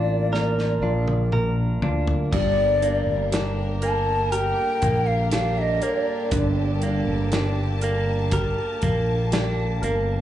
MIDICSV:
0, 0, Header, 1, 7, 480
1, 0, Start_track
1, 0, Tempo, 1000000
1, 1117, Time_signature, 4, 2, 24, 8
1, 4901, End_track
2, 0, Start_track
2, 0, Title_t, "Bansuri"
2, 0, Program_c, 0, 73
2, 0, Note_on_c, 0, 74, 62
2, 514, Note_off_c, 0, 74, 0
2, 1112, Note_on_c, 0, 74, 79
2, 1576, Note_off_c, 0, 74, 0
2, 1842, Note_on_c, 0, 81, 74
2, 2070, Note_on_c, 0, 79, 87
2, 2077, Note_off_c, 0, 81, 0
2, 2431, Note_on_c, 0, 77, 73
2, 2438, Note_off_c, 0, 79, 0
2, 2550, Note_off_c, 0, 77, 0
2, 2553, Note_on_c, 0, 77, 70
2, 2678, Note_on_c, 0, 76, 60
2, 2685, Note_off_c, 0, 77, 0
2, 2695, Note_on_c, 0, 75, 65
2, 2699, Note_off_c, 0, 76, 0
2, 2796, Note_on_c, 0, 73, 65
2, 2803, Note_off_c, 0, 75, 0
2, 2877, Note_off_c, 0, 73, 0
2, 2877, Note_on_c, 0, 74, 65
2, 3277, Note_off_c, 0, 74, 0
2, 4901, End_track
3, 0, Start_track
3, 0, Title_t, "String section"
3, 0, Program_c, 1, 48
3, 1113, Note_on_c, 1, 67, 61
3, 1114, Note_on_c, 1, 58, 56
3, 1114, Note_on_c, 1, 70, 67
3, 1115, Note_on_c, 1, 50, 62
3, 3017, Note_off_c, 1, 70, 0
3, 3033, Note_on_c, 1, 81, 73
3, 4901, Note_off_c, 1, 50, 0
3, 4901, Note_off_c, 1, 58, 0
3, 4901, Note_off_c, 1, 67, 0
3, 4901, Note_off_c, 1, 81, 0
3, 4901, End_track
4, 0, Start_track
4, 0, Title_t, "Grand piano"
4, 0, Program_c, 2, 0
4, 0, Control_c, 2, 64, 127
4, 0, Note_on_c, 2, 58, 45
4, 0, Note_on_c, 2, 65, 43
4, 150, Note_off_c, 2, 58, 0
4, 157, Note_on_c, 2, 58, 44
4, 387, Note_off_c, 2, 65, 0
4, 394, Note_on_c, 2, 65, 40
4, 631, Note_off_c, 2, 58, 0
4, 638, Note_on_c, 2, 58, 39
4, 871, Note_off_c, 2, 65, 0
4, 878, Note_on_c, 2, 65, 42
4, 1103, Note_off_c, 2, 58, 0
4, 1110, Note_off_c, 2, 65, 0
4, 1116, Note_on_c, 2, 55, 53
4, 1124, Control_c, 2, 64, 0
4, 1203, Control_c, 2, 64, 127
4, 1355, Note_on_c, 2, 62, 41
4, 1592, Note_on_c, 2, 67, 47
4, 1832, Note_on_c, 2, 70, 45
4, 2065, Note_off_c, 2, 67, 0
4, 2073, Note_on_c, 2, 67, 45
4, 2297, Note_off_c, 2, 62, 0
4, 2309, Note_off_c, 2, 70, 0
4, 2316, Note_on_c, 2, 70, 42
4, 2547, Note_off_c, 2, 67, 0
4, 2554, Note_on_c, 2, 67, 43
4, 2787, Note_off_c, 2, 70, 0
4, 2794, Note_on_c, 2, 70, 44
4, 3017, Note_off_c, 2, 55, 0
4, 3032, Note_on_c, 2, 50, 60
4, 3277, Note_on_c, 2, 62, 48
4, 3497, Note_off_c, 2, 67, 0
4, 3513, Note_on_c, 2, 67, 48
4, 3737, Note_off_c, 2, 70, 0
4, 3753, Note_on_c, 2, 70, 49
4, 3984, Note_off_c, 2, 67, 0
4, 3992, Note_on_c, 2, 67, 51
4, 4218, Note_off_c, 2, 62, 0
4, 4226, Note_off_c, 2, 70, 0
4, 4233, Note_on_c, 2, 70, 46
4, 4466, Note_off_c, 2, 67, 0
4, 4473, Note_on_c, 2, 67, 44
4, 4706, Note_off_c, 2, 70, 0
4, 4713, Note_on_c, 2, 70, 53
4, 4901, Note_off_c, 2, 50, 0
4, 4901, Note_off_c, 2, 67, 0
4, 4901, Note_off_c, 2, 70, 0
4, 4901, End_track
5, 0, Start_track
5, 0, Title_t, "Clean electric guitar"
5, 0, Program_c, 3, 27
5, 0, Note_on_c, 3, 58, 45
5, 0, Note_on_c, 3, 62, 42
5, 0, Note_on_c, 3, 70, 52
5, 155, Note_off_c, 3, 70, 0
5, 157, Note_on_c, 3, 70, 51
5, 395, Note_off_c, 3, 62, 0
5, 397, Note_on_c, 3, 62, 46
5, 635, Note_off_c, 3, 70, 0
5, 637, Note_on_c, 3, 70, 49
5, 877, Note_off_c, 3, 62, 0
5, 879, Note_on_c, 3, 62, 43
5, 1118, Note_on_c, 3, 43, 66
5, 1356, Note_off_c, 3, 58, 0
5, 1357, Note_on_c, 3, 58, 41
5, 1595, Note_off_c, 3, 62, 0
5, 1597, Note_on_c, 3, 62, 46
5, 1832, Note_off_c, 3, 58, 0
5, 1838, Note_on_c, 3, 58, 45
5, 2073, Note_off_c, 3, 70, 0
5, 2075, Note_on_c, 3, 70, 54
5, 2308, Note_off_c, 3, 58, 0
5, 2313, Note_on_c, 3, 58, 52
5, 2550, Note_off_c, 3, 62, 0
5, 2555, Note_on_c, 3, 62, 52
5, 2790, Note_off_c, 3, 58, 0
5, 2796, Note_on_c, 3, 58, 43
5, 3031, Note_off_c, 3, 43, 0
5, 3036, Note_on_c, 3, 43, 68
5, 3273, Note_off_c, 3, 58, 0
5, 3279, Note_on_c, 3, 58, 49
5, 3515, Note_off_c, 3, 62, 0
5, 3521, Note_on_c, 3, 62, 48
5, 3755, Note_off_c, 3, 58, 0
5, 3760, Note_on_c, 3, 58, 53
5, 3993, Note_off_c, 3, 70, 0
5, 3999, Note_on_c, 3, 70, 63
5, 4233, Note_off_c, 3, 58, 0
5, 4239, Note_on_c, 3, 58, 56
5, 4476, Note_off_c, 3, 62, 0
5, 4481, Note_on_c, 3, 62, 54
5, 4718, Note_off_c, 3, 58, 0
5, 4723, Note_on_c, 3, 58, 53
5, 4901, Note_off_c, 3, 43, 0
5, 4901, Note_off_c, 3, 58, 0
5, 4901, Note_off_c, 3, 62, 0
5, 4901, Note_off_c, 3, 70, 0
5, 4901, End_track
6, 0, Start_track
6, 0, Title_t, "Fretless electric bass"
6, 0, Program_c, 4, 35
6, 0, Note_on_c, 4, 33, 57
6, 376, Note_off_c, 4, 33, 0
6, 395, Note_on_c, 4, 34, 66
6, 857, Note_off_c, 4, 34, 0
6, 875, Note_on_c, 4, 38, 60
6, 1099, Note_off_c, 4, 38, 0
6, 1117, Note_on_c, 4, 31, 76
6, 1458, Note_off_c, 4, 31, 0
6, 1473, Note_on_c, 4, 31, 59
6, 2176, Note_off_c, 4, 31, 0
6, 2316, Note_on_c, 4, 34, 66
6, 2778, Note_off_c, 4, 34, 0
6, 3033, Note_on_c, 4, 31, 82
6, 3376, Note_off_c, 4, 31, 0
6, 3393, Note_on_c, 4, 31, 82
6, 4096, Note_off_c, 4, 31, 0
6, 4238, Note_on_c, 4, 34, 66
6, 4699, Note_off_c, 4, 34, 0
6, 4717, Note_on_c, 4, 31, 78
6, 4901, Note_off_c, 4, 31, 0
6, 4901, End_track
7, 0, Start_track
7, 0, Title_t, "Drums"
7, 164, Note_on_c, 9, 38, 43
7, 212, Note_off_c, 9, 38, 0
7, 282, Note_on_c, 9, 38, 36
7, 330, Note_off_c, 9, 38, 0
7, 516, Note_on_c, 9, 48, 54
7, 564, Note_off_c, 9, 48, 0
7, 635, Note_on_c, 9, 47, 67
7, 683, Note_off_c, 9, 47, 0
7, 875, Note_on_c, 9, 43, 76
7, 923, Note_off_c, 9, 43, 0
7, 996, Note_on_c, 9, 43, 73
7, 1044, Note_off_c, 9, 43, 0
7, 1116, Note_on_c, 9, 36, 82
7, 1116, Note_on_c, 9, 49, 65
7, 1164, Note_off_c, 9, 36, 0
7, 1164, Note_off_c, 9, 49, 0
7, 1356, Note_on_c, 9, 42, 52
7, 1404, Note_off_c, 9, 42, 0
7, 1596, Note_on_c, 9, 42, 73
7, 1602, Note_on_c, 9, 38, 91
7, 1644, Note_off_c, 9, 42, 0
7, 1650, Note_off_c, 9, 38, 0
7, 1833, Note_on_c, 9, 42, 53
7, 1881, Note_off_c, 9, 42, 0
7, 2074, Note_on_c, 9, 42, 74
7, 2122, Note_off_c, 9, 42, 0
7, 2313, Note_on_c, 9, 42, 48
7, 2316, Note_on_c, 9, 36, 69
7, 2361, Note_off_c, 9, 42, 0
7, 2364, Note_off_c, 9, 36, 0
7, 2551, Note_on_c, 9, 42, 73
7, 2557, Note_on_c, 9, 38, 84
7, 2599, Note_off_c, 9, 42, 0
7, 2605, Note_off_c, 9, 38, 0
7, 2792, Note_on_c, 9, 42, 52
7, 2840, Note_off_c, 9, 42, 0
7, 3031, Note_on_c, 9, 42, 82
7, 3033, Note_on_c, 9, 36, 91
7, 3079, Note_off_c, 9, 42, 0
7, 3081, Note_off_c, 9, 36, 0
7, 3272, Note_on_c, 9, 42, 51
7, 3320, Note_off_c, 9, 42, 0
7, 3512, Note_on_c, 9, 42, 73
7, 3518, Note_on_c, 9, 38, 95
7, 3560, Note_off_c, 9, 42, 0
7, 3566, Note_off_c, 9, 38, 0
7, 3750, Note_on_c, 9, 42, 50
7, 3798, Note_off_c, 9, 42, 0
7, 3991, Note_on_c, 9, 42, 78
7, 3994, Note_on_c, 9, 36, 70
7, 4039, Note_off_c, 9, 42, 0
7, 4042, Note_off_c, 9, 36, 0
7, 4232, Note_on_c, 9, 42, 47
7, 4237, Note_on_c, 9, 36, 71
7, 4280, Note_off_c, 9, 42, 0
7, 4285, Note_off_c, 9, 36, 0
7, 4474, Note_on_c, 9, 42, 69
7, 4480, Note_on_c, 9, 38, 101
7, 4522, Note_off_c, 9, 42, 0
7, 4528, Note_off_c, 9, 38, 0
7, 4718, Note_on_c, 9, 42, 51
7, 4766, Note_off_c, 9, 42, 0
7, 4901, End_track
0, 0, End_of_file